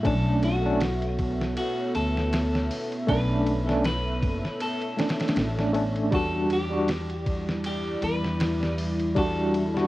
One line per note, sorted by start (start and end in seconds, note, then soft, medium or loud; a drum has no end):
0.00 0.58 A3 medium
0.00 6.08 E5 medium
0.05 1.54 B1 loud
0.05 6.08 B3 medium
0.05 0.59 C#4 medium
0.05 0.60 D4 loud
0.05 6.09 A4 medium
0.05 0.41 A4 loud
0.05 6.08 C#5 medium
0.05 kick loud
0.05 ride medium
0.43 1.53 F#4 medium
0.43 ride medium
0.62 0.79 A3 loud
0.62 0.80 C#4 medium
0.62 0.81 D4 loud
0.80 snare loud
0.80 ride medium
1.02 ride soft
1.19 kick medium
1.19 ride medium
1.41 snare medium
1.57 1.95 F#4 medium
1.57 ride medium
1.95 2.68 D2 loud
1.95 3.09 A4 loud
1.95 ride medium
2.17 snare soft
2.32 snare loud
2.32 ride medium
2.55 snare soft
2.71 open hi-hat medium
2.92 ride soft
3.07 4.19 B1 medium
3.07 3.62 A3 medium
3.07 3.63 C#4 medium
3.07 3.63 D4 loud
3.07 3.84 B4 loud
3.07 kick loud
3.07 ride medium
3.47 ride medium
3.66 3.83 A3 medium
3.66 3.84 C#4 medium
3.66 3.85 D4 loud
3.66 snare soft
3.84 4.61 B4 loud
3.84 snare loud
3.84 ride medium
4.22 4.41 F#1 medium
4.22 kick medium
4.22 ride medium
4.45 snare soft
4.60 5.71 A4 medium
4.60 ride medium
4.82 ride soft
4.97 5.52 A3 medium
4.97 5.53 C#4 medium
4.97 5.53 D4 medium
4.97 snare medium
4.97 ride medium
5.09 snare loud
5.09 ride medium
5.20 snare medium
5.20 ride medium
5.28 snare medium
5.28 ride medium
5.36 6.09 A1 medium
5.36 snare loud
5.36 ride medium
5.56 5.70 A3 medium
5.56 5.70 C#4 medium
5.56 5.71 D4 medium
5.56 snare medium
5.73 6.08 A3 medium
5.73 6.08 C#4 medium
5.73 6.09 D4 medium
5.73 ride medium
5.96 ride soft
6.11 7.99 E2 medium
6.11 6.66 G3 loud
6.11 9.87 G3 medium
6.11 6.66 D4 medium
6.11 9.87 E4 medium
6.11 6.67 F#4 loud
6.11 6.52 A4 loud
6.11 9.13 D5 medium
6.11 kick loud
6.11 ride medium
6.50 7.65 G4 loud
6.50 ride medium
6.70 6.87 G3 loud
6.70 6.88 D4 medium
6.70 6.89 F#4 loud
6.88 snare loud
6.88 ride medium
7.10 ride soft
7.26 kick medium
7.26 ride medium
7.49 snare medium
7.64 8.04 G4 loud
7.64 ride medium
8.02 9.87 E2 medium
8.02 9.17 B4 loud
8.02 ride medium
8.25 snare soft
8.40 snare loud
8.40 ride medium
8.63 snare medium
8.78 open hi-hat medium
9.00 ride soft
9.15 9.70 G3 loud
9.15 9.70 D4 medium
9.15 9.71 F#4 loud
9.15 9.87 A4 loud
9.15 9.87 E5 medium
9.15 kick loud
9.15 ride medium
9.54 ride medium
9.74 9.87 G3 loud
9.74 9.87 D4 medium
9.74 9.87 F#4 loud
9.74 snare medium